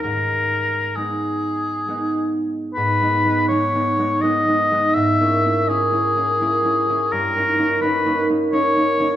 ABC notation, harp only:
X:1
M:3/4
L:1/8
Q:1/4=82
K:G#m
V:1 name="Harp"
[G,,D]2 [G,B,D]2 [G,B,D]2 | (3G,, [G,B,D] [G,B,D] (3[G,B,D] [G,B,D] [G,B,D] (3[G,B,D] [G,B,D] [G,B,D] | (3G,, [A,CE] [A,CE] (3[A,CE] [A,CE] [A,CE] (3[A,CE] [A,CE] [A,CE] | (3=G,, [A,CD] [A,CD] (3[A,CD] [A,CD] [A,CD] (3[A,CD] [A,CD] [A,CD] |]